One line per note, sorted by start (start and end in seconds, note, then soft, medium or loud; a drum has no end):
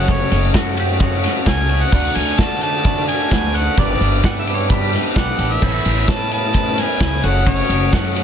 0.00 0.20 F#1 loud
0.00 0.53 F#3 medium
0.00 0.31 A3 medium
0.00 0.30 C#4 medium
0.00 0.32 F#4 medium
0.00 0.40 F#4 medium
0.00 0.33 A4 medium
0.00 0.41 A4 medium
0.00 0.41 C#5 medium
0.07 0.77 F#2 loud
0.07 0.77 C#3 loud
0.07 0.53 F#3 loud
0.07 0.54 A3 loud
0.07 0.54 C#4 loud
0.07 0.55 F#4 loud
0.07 0.53 C#5 medium
0.07 kick loud
0.07 ride medium
0.07 shaker medium
0.30 0.49 F#1 loud
0.30 0.53 A3 medium
0.30 0.53 C#4 medium
0.30 0.53 F#4 medium
0.30 0.54 A4 medium
0.30 ride medium
0.30 shaker medium
0.52 1.25 F#2 medium
0.52 0.77 F#3 medium
0.52 0.75 A3 medium
0.52 0.76 C#4 medium
0.52 0.87 F#4 medium
0.52 0.77 F#4 medium
0.52 0.87 A4 medium
0.52 0.78 A4 medium
0.52 0.88 C#5 medium
0.52 kick loud
0.52 snare loud
0.52 ride loud
0.52 shaker loud
0.56 0.78 F#4 medium
0.76 1.00 F#3 medium
0.76 0.89 A3 medium
0.76 0.89 C#4 medium
0.76 0.88 F#4 medium
0.76 1.01 G4 medium
0.76 0.87 A4 medium
0.76 ride medium
0.76 shaker medium
0.88 1.13 C#4 soft
0.88 1.11 F#4 medium
0.88 1.09 A4 medium
1.00 1.70 F#2 medium
1.00 1.70 C#3 loud
1.00 1.46 F#3 medium
1.00 1.47 A3 loud
1.00 1.47 C#4 loud
1.00 1.34 F#4 medium
1.00 1.35 F#4 medium
1.00 1.48 F#4 loud
1.00 1.34 A4 medium
1.00 1.35 C#5 medium
1.00 kick loud
1.00 ride medium
1.00 shaker loud
1.10 1.22 C#4 medium
1.10 1.23 F#4 medium
1.10 1.23 A4 medium
1.22 1.45 A3 medium
1.22 1.46 C#4 medium
1.22 1.46 F#4 medium
1.22 1.47 A4 medium
1.22 snare soft
1.22 ride medium
1.22 shaker medium
1.45 1.82 C#2 medium
1.45 1.58 F#3 medium
1.45 1.58 A3 medium
1.45 1.59 C#4 medium
1.45 1.79 F#4 medium
1.45 1.59 F#4 medium
1.45 1.80 A4 medium
1.45 1.57 A4 medium
1.45 1.81 C#5 medium
1.45 1.84 G#5 loud
1.45 kick loud
1.45 snare loud
1.45 ride loud
1.45 shaker medium
1.58 1.83 C#4 soft
1.58 1.82 F#4 soft
1.58 1.81 A4 medium
1.69 1.92 F#3 medium
1.69 1.92 A3 medium
1.69 1.92 C#4 medium
1.69 1.92 F#4 medium
1.69 ride medium
1.69 shaker medium
1.82 1.93 C#4 soft
1.82 1.93 F#4 soft
1.82 1.93 A4 medium
1.82 2.18 F#5 loud
1.91 2.10 D2 loud
1.91 2.16 D3 medium
1.91 2.15 A3 medium
1.91 2.16 D4 medium
1.91 2.25 F#4 medium
1.91 2.16 F#4 medium
1.91 2.26 A4 medium
1.91 2.17 A4 medium
1.91 2.26 D5 medium
1.91 kick loud
1.91 crash loud
1.91 shaker loud
2.15 2.34 D2 loud
2.15 2.39 A3 medium
2.15 2.39 D4 medium
2.15 2.40 F#4 medium
2.15 2.40 A4 medium
2.15 2.42 G#5 loud
2.15 ride medium
2.15 shaker medium
2.38 3.09 D3 medium
2.38 2.62 D3 medium
2.38 2.61 A3 medium
2.38 2.62 D4 medium
2.38 2.72 F#4 medium
2.38 2.62 F#4 medium
2.38 2.73 A4 medium
2.38 2.63 A4 medium
2.38 2.73 D5 medium
2.38 2.62 A5 loud
2.38 kick loud
2.38 snare loud
2.38 ride loud
2.38 shaker loud
2.61 2.74 A3 medium
2.61 2.74 D4 medium
2.61 2.75 F#4 medium
2.61 2.73 A4 medium
2.61 3.05 A5 loud
2.61 ride medium
2.61 shaker medium
2.74 2.99 D4 soft
2.74 2.97 F#4 soft
2.74 2.96 A4 medium
2.85 3.30 D3 medium
2.85 3.31 A3 medium
2.85 3.31 D4 loud
2.85 3.19 F#4 medium
2.85 3.32 F#4 loud
2.85 3.19 A4 medium
2.85 3.20 D5 medium
2.85 kick loud
2.85 ride loud
2.85 shaker loud
2.97 3.07 D4 soft
2.97 3.08 F#4 medium
2.97 3.09 A4 medium
3.08 3.30 A3 medium
3.08 3.31 D4 medium
3.08 3.31 F#4 medium
3.08 3.32 A4 medium
3.08 3.58 G#5 medium
3.08 ride medium
3.08 shaker medium
3.31 3.67 D2 loud
3.31 3.43 D3 medium
3.31 3.43 A3 medium
3.31 3.43 D4 medium
3.31 3.65 F#4 medium
3.31 3.42 F#4 medium
3.31 3.65 A4 medium
3.31 3.40 A4 medium
3.31 3.66 B4 medium
3.31 kick loud
3.31 snare loud
3.31 ride loud
3.31 shaker medium
3.41 3.67 D4 soft
3.41 3.65 F#4 soft
3.41 3.64 A4 soft
3.54 3.77 A3 medium
3.54 3.77 D4 medium
3.54 3.76 F#4 medium
3.54 3.80 F#5 medium
3.54 ride medium
3.54 shaker medium
3.65 3.77 D4 soft
3.65 3.78 F#4 soft
3.65 3.77 A4 medium
3.77 3.95 G1 loud
3.77 4.47 G2 loud
3.77 4.47 D3 medium
3.77 4.00 G3 medium
3.77 4.24 B3 loud
3.77 4.01 D4 medium
3.77 4.11 G4 medium
3.77 4.01 G4 medium
3.77 4.11 B4 medium
3.77 4.02 B4 loud
3.77 4.24 D5 medium
3.77 4.12 D5 medium
3.77 kick loud
3.77 ride loud
3.77 shaker medium
4.01 4.18 G1 loud
4.01 4.23 G3 medium
4.01 4.24 D4 medium
4.01 4.25 G4 medium
4.01 ride medium
4.01 shaker medium
4.05 4.25 B4 medium
4.24 4.94 G2 medium
4.24 4.45 G3 medium
4.24 4.47 D4 medium
4.24 4.57 G4 medium
4.24 4.48 G4 medium
4.24 4.58 B4 medium
4.24 4.48 B4 medium
4.24 4.58 D5 medium
4.24 4.39 F#5 medium
4.24 kick loud
4.24 snare loud
4.24 ride loud
4.24 shaker loud
4.40 4.54 E5 medium
4.46 4.58 G3 medium
4.46 4.70 B3 medium
4.46 4.59 D4 medium
4.46 4.59 G4 medium
4.46 4.57 B4 medium
4.46 ride medium
4.46 shaker medium
4.55 4.79 B4 medium
4.55 4.70 C#5 medium
4.60 4.83 D4 medium
4.60 4.81 G4 soft
4.68 5.39 G2 medium
4.68 5.39 D3 medium
4.68 5.15 G3 medium
4.68 5.15 B3 loud
4.68 5.16 D4 loud
4.68 5.02 G4 medium
4.68 5.16 G4 medium
4.68 5.03 B4 medium
4.68 5.04 B4 medium
4.68 5.04 D5 medium
4.68 kick loud
4.68 ride loud
4.68 shaker medium
4.81 4.92 D4 medium
4.81 4.93 G4 medium
4.81 4.93 B4 medium
4.91 5.15 G3 medium
4.91 5.15 D4 medium
4.91 5.16 G4 medium
4.91 snare soft
4.91 ride medium
4.91 shaker medium
4.96 5.16 B4 medium
5.15 5.37 B1 medium
5.15 5.28 G3 medium
5.15 5.39 B3 medium
5.15 5.28 D4 medium
5.15 5.49 G4 medium
5.15 5.27 G4 medium
5.15 5.49 B4 medium
5.15 5.26 B4 medium
5.15 5.50 D5 medium
5.15 5.53 F#5 medium
5.15 kick loud
5.15 snare loud
5.15 ride medium
5.15 shaker medium
5.27 5.52 D4 soft
5.27 5.51 G4 soft
5.27 5.49 B4 medium
5.38 5.60 A1 medium
5.38 5.62 G3 medium
5.38 5.61 B3 medium
5.38 5.61 D4 medium
5.38 5.61 G4 medium
5.38 ride medium
5.38 shaker medium
5.50 5.63 D4 soft
5.50 5.63 G4 soft
5.50 5.62 B4 soft
5.50 6.11 E5 loud
5.61 5.80 A1 loud
5.61 5.86 A2 medium
5.61 5.85 E3 medium
5.61 5.84 B3 medium
5.61 5.85 C#4 medium
5.61 5.85 E4 medium
5.61 5.95 A4 medium
5.61 5.86 A4 medium
5.61 5.96 B4 medium
5.61 5.96 C#5 medium
5.61 kick loud
5.61 crash loud
5.61 shaker medium
5.85 6.03 A1 loud
5.85 6.08 B3 medium
5.85 6.08 C#4 medium
5.85 6.08 E4 medium
5.85 6.09 A4 medium
5.85 ride medium
6.08 6.79 A2 medium
6.08 6.31 A2 medium
6.08 6.32 E3 medium
6.08 6.31 B3 medium
6.08 6.32 C#4 medium
6.08 6.32 E4 medium
6.08 6.41 A4 medium
6.08 6.32 A4 medium
6.08 6.42 B4 medium
6.08 6.42 C#5 medium
6.08 6.32 A5 loud
6.08 kick loud
6.08 snare loud
6.08 ride loud
6.08 shaker medium
6.31 6.43 B3 medium
6.31 6.44 C#4 medium
6.31 6.44 E4 medium
6.31 6.81 A5 loud
6.31 ride medium
6.31 shaker medium
6.35 6.42 A4 medium
6.43 6.68 B3 soft
6.43 6.67 C#4 soft
6.43 6.67 E4 medium
6.43 6.66 A4 soft
6.52 7.22 A2 medium
6.52 6.99 E3 medium
6.52 7.01 B3 medium
6.52 7.01 C#4 loud
6.52 6.87 A4 medium
6.52 6.87 B4 medium
6.52 6.88 C#5 medium
6.52 kick loud
6.52 ride loud
6.52 shaker loud
6.56 7.02 E4 loud
6.67 6.78 B3 soft
6.67 6.78 C#4 soft
6.67 6.79 E4 medium
6.67 6.78 A4 medium
6.78 7.01 B3 medium
6.78 7.02 C#4 medium
6.78 7.02 E4 medium
6.78 7.02 A4 medium
6.78 7.27 G#5 loud
6.78 snare soft
6.78 ride medium
6.78 shaker medium
7.00 7.18 C#2 medium
7.00 7.12 A2 medium
7.00 7.13 E3 medium
7.00 7.13 B3 medium
7.00 7.13 C#4 medium
7.00 7.13 E4 medium
7.00 7.22 A4 medium
7.00 7.11 A4 medium
7.00 7.24 B4 medium
7.00 7.23 C#5 medium
7.00 kick loud
7.00 snare loud
7.00 ride loud
7.00 shaker medium
7.12 7.24 B3 soft
7.12 7.24 C#4 soft
7.12 7.25 E4 soft
7.12 7.24 A4 medium
7.23 7.59 F#1 loud
7.23 7.46 F#2 medium
7.23 7.46 C#3 medium
7.23 7.93 F#3 medium
7.23 7.69 A3 medium
7.23 7.70 C#4 medium
7.23 7.78 F#4 medium
7.23 7.71 F#4 medium
7.23 7.79 A4 medium
7.23 7.72 A4 medium
7.23 7.79 C#5 medium
7.23 7.51 F#5 loud
7.23 ride medium
7.23 shaker medium
7.46 8.16 F#2 medium
7.46 8.16 C#3 loud
7.46 7.92 F#3 loud
7.46 7.93 A3 loud
7.46 7.93 C#4 loud
7.46 7.94 F#4 loud
7.46 7.94 C#5 medium
7.46 kick loud
7.46 ride loud
7.46 shaker loud
7.69 7.87 F#1 medium
7.69 7.93 A3 medium
7.69 7.93 C#4 medium
7.69 7.94 F#4 medium
7.69 7.94 A4 medium
7.69 ride medium
7.69 shaker medium
7.92 8.24 F#2 loud
7.92 8.16 F#3 medium
7.92 8.15 A3 medium
7.92 8.16 C#4 medium
7.92 8.24 F#4 medium
7.92 8.17 F#4 medium
7.92 8.24 A4 medium
7.92 8.17 A4 medium
7.92 8.24 C#5 medium
7.92 8.23 F#5 loud
7.92 kick loud
7.92 snare loud
7.92 ride loud
7.92 shaker medium
8.16 8.24 F#3 medium
8.16 8.24 A3 medium
8.16 8.24 C#4 medium
8.16 8.24 F#4 medium
8.16 ride medium
8.16 shaker medium
8.20 8.24 A4 medium